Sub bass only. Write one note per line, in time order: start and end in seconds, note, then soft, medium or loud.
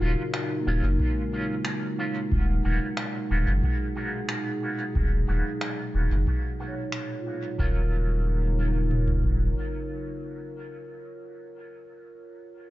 0.01 0.15 D#1 medium
0.67 0.81 D#1 medium
0.83 0.98 F#1 medium
2.32 2.61 D#1 medium
2.65 2.79 D#1 medium
3.31 3.45 D#1 medium
3.47 3.61 F#1 medium
4.95 5.24 D#1 medium
5.28 5.43 D#1 medium
5.94 6.09 D#1 medium
6.11 6.25 F#1 medium
7.59 9.53 D#1 medium